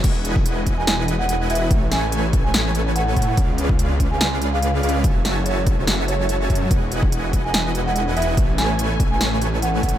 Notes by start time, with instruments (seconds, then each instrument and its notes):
Already playing: string section E3 G#3 F#4
0.04 detuned saw bass E1, supersaw synth E4 B4 D#5 F#5 G#5, string section D#5, kick, closed hi-hat, crash
0.25 closed hi-hat
0.36 kick
0.46 closed hi-hat
0.67 kick, closed hi-hat
0.77 detuned saw bass E1, supersaw synth E4 B4 D#5 F#5 G#5, marimba G#5
0.87 marimba G#5, snare, closed hi-hat
1.08 closed hi-hat
1.19 marimba F#5
1.29 marimba F#5, closed hi-hat
1.50 detuned saw bass E1, supersaw synth E4 B4 D#5 F#5 G#5, marimba E5, closed hi-hat
1.55 closed hi-hat
1.71 detuned saw bass A1, string section C#3 A3 B3 G#5, supersaw synth A3 A4 B4 C#5 G#5, kick, closed hi-hat
1.92 marimba G#5, snare, closed hi-hat
2.12 closed hi-hat
2.33 kick, closed hi-hat
2.44 detuned saw bass A1, supersaw synth A3 A4 B4 C#5 G#5, marimba G#5
2.54 snare, closed hi-hat
2.75 closed hi-hat
2.96 marimba F#5, closed hi-hat
3.17 detuned saw bass A2, supersaw synth A3 A4 B4 C#5 G#5, marimba F#5, kick, closed hi-hat
3.22 closed hi-hat
3.28 marimba F#5
3.37 detuned saw bass C#2, string section D3 F4, supersaw synth C#4 G#4 B4 D5 F5, kick, closed hi-hat
3.58 closed hi-hat
3.69 kick
3.79 closed hi-hat
4.00 kick, closed hi-hat
4.11 detuned saw bass C#2, supersaw synth C#4 G#4 B4 D5 F5, marimba G#5
4.21 marimba G#5, snare, closed hi-hat
4.42 closed hi-hat
4.53 marimba F5
4.62 marimba F5, closed hi-hat
4.83 detuned saw bass C#2, supersaw synth C#4 G#4 B4 D5 F5, marimba F5, closed hi-hat
4.89 closed hi-hat
5.04 detuned saw bass F#1, string section E3 G#3 A3 F#4, supersaw synth F#4 C#5 E5 G#5 A5, kick, closed hi-hat
5.25 snare, closed hi-hat
5.46 marimba C#5, closed hi-hat
5.57 marimba C#5
5.67 kick, closed hi-hat
5.78 detuned saw bass F#1, supersaw synth F#4 C#5 E5 G#5 A5
5.87 snare, closed hi-hat
6.08 marimba C#5, closed hi-hat
6.19 marimba C#5
6.29 closed hi-hat
6.50 detuned saw bass F#2, supersaw synth F#4 C#5 E5 G#5 A5, marimba C#5, kick, closed hi-hat
6.55 closed hi-hat
6.71 detuned saw bass E1, string section E3 D#5, supersaw synth E4 B4 D#5 F#5 G#5, kick, closed hi-hat
6.92 closed hi-hat
7.03 kick
7.12 closed hi-hat
7.33 kick, closed hi-hat
7.44 detuned saw bass E1, supersaw synth E4 B4 D#5 F#5 G#5, marimba G#5
7.54 marimba G#5, snare, closed hi-hat
7.75 closed hi-hat
7.86 marimba F#5
7.96 closed hi-hat
8.17 detuned saw bass E1, supersaw synth E4 B4 D#5 F#5 G#5, marimba E5, closed hi-hat
8.22 closed hi-hat
8.37 detuned saw bass A1, string section C#3 A3 B3 G#5, supersaw synth A3 A4 B4 C#5 G#5, kick, closed hi-hat
8.58 marimba G#5, snare, closed hi-hat
8.79 closed hi-hat
9.00 kick, closed hi-hat
9.11 detuned saw bass A1, supersaw synth A3 A4 B4 C#5 G#5, marimba G#5
9.21 snare, closed hi-hat
9.42 closed hi-hat
9.62 marimba F#5, closed hi-hat
9.83 detuned saw bass A1, supersaw synth A3 A4 B4 C#5 G#5, marimba F#5, kick, closed hi-hat
9.89 closed hi-hat
9.94 marimba F#5